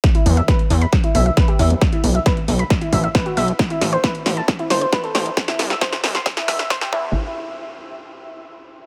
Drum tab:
HH |xxoxxxoxxxoxxxox|xxo-xxoxxxoxxxox|xxoxxxoxxxoxxxox|xxoxxxo-xxoxxx--|
SD |o---o---o---o---|o---o---o---o---|o-o-o-o-o-o-o-o-|oooooooooooooo--|
T2 |--o-------o----o|--o---o---o-----|--o-------o----o|--o---o---o-----|
BD |o---o---o---o---|o---o---o-o-o---|o---o---o---o---|o---o---o-o-o-o-|

HH |----------------|
SD |----------------|
T2 |----------------|
BD |----------------|